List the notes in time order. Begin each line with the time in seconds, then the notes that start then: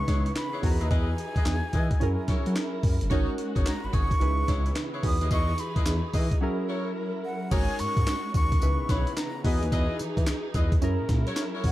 Already playing: C#3 E3 B3 D#4 E4 G#4 B4 C#6
0.08 C#2 E4 G#4 B4 C#5, kick, snare, closed hi-hat
0.26 closed hi-hat
0.36 B5, snare, clap, closed hi-hat
0.53 E4 G#4 B4 C#5
0.62 E2 E3 D#4 F#4 G#4 A#4 A#5, kick, open hi-hat
0.71 B4
0.80 D#2 E4 G#4 B4 D#5, closed hi-hat
0.90 E2 E4 G#4 B4 D#5 G#5, kick, closed hi-hat
1.18 closed hi-hat
1.36 E2 E4 G#4 B4 D#5, kick, closed hi-hat
1.45 E2, snare, clap, closed hi-hat
1.73 E3 E4 G#4 B4 D#5, kick, closed hi-hat
1.91 kick, closed hi-hat
2.00 F#2 F#3 C#4 E4 G#4 A#4, closed hi-hat
2.28 F#3 E4 F#4 A#4 C#5, kick, snare, closed hi-hat
2.46 F#3, closed hi-hat
2.56 snare, clap, closed hi-hat
2.83 F#2, kick, open hi-hat
3.01 F#1, closed hi-hat
3.10 G#1 G#3 C#4 D#4 F#4 G#4 A#4 C#5, kick, closed hi-hat
3.38 closed hi-hat
3.56 G#1 D#4 F#4 G#4 C#5, kick, closed hi-hat
3.66 A#5, snare, clap, closed hi-hat
3.84 G#1 B5
3.92 G#1 D#4 F#4 G#4 C#5 C#6, kick, closed hi-hat
4.11 kick, closed hi-hat
4.20 C#2 C#3 E3 B3 D#4 E4 G#4 B4, closed hi-hat
4.48 C#2 E4 G#4 B4 C#5, kick, snare, closed hi-hat
4.66 closed hi-hat
4.76 snare, clap, closed hi-hat
4.93 E4 G#4 B4 C#5
5.02 E2 E3 D#4 F#4 G#4 B4 D#6, kick, open hi-hat
5.21 D#2 E4 G#4 B4 D#5, closed hi-hat
5.31 E2 E4 G#4 B4 D#5 C#6, kick, closed hi-hat, tambourine
5.58 B5, closed hi-hat, tambourine
5.76 E2 E4 G#4 B4 D#5, kick, closed hi-hat
5.86 E2, snare, clap, closed hi-hat, tambourine
6.13 E3 E4 G#4 B4 D#5, kick, open hi-hat, tambourine
6.31 kick, closed hi-hat
6.41 F#3 C#4 E4 G#4 A#4
6.69 E4 F#4 A#4 C#5
7.25 F#5
7.51 G#1 G#3 C#4 D#4 F#4 G#4 A#4 C#5 G#5, kick, closed hi-hat, crash, tambourine
7.79 G#2 C#6, closed hi-hat, tambourine
7.97 G#2, kick, closed hi-hat
8.07 snare, clap, closed hi-hat, tambourine
8.34 D#2 C#6, kick, closed hi-hat, tambourine
8.52 kick, closed hi-hat
8.62 C#2 C#3 E3 B3 D#4 E4 G#4 B4, closed hi-hat, tambourine
8.81 B1
8.89 B1 E4 G#4 B4 C#5 B5, kick, snare, closed hi-hat, tambourine
9.07 closed hi-hat
9.17 A#5, snare, clap, closed hi-hat, tambourine
9.44 E2 E3 D#4 E4 F#4 G#4 B4 D#5 G#5, kick, open hi-hat
9.63 D#2, closed hi-hat
9.72 E2 E4 G#4 B4 D#5, kick, closed hi-hat, tambourine
9.99 E3, closed hi-hat, tambourine
10.17 E3, kick, closed hi-hat
10.27 snare, clap, closed hi-hat, tambourine
10.54 E2 E4 G#4 B4 D#5, kick, closed hi-hat, tambourine
10.72 kick, closed hi-hat
10.82 F#2 F#3 C#4 E4 G#4 A#4, closed hi-hat, tambourine
11.01 A#2
11.09 A#2, kick, snare, closed hi-hat, tambourine
11.26 E4 F#4 A#4 C#5, closed hi-hat
11.36 snare, clap, closed hi-hat, tambourine
11.54 E4 F#4 A#4 C#5
11.64 A#1 F#5, kick, open hi-hat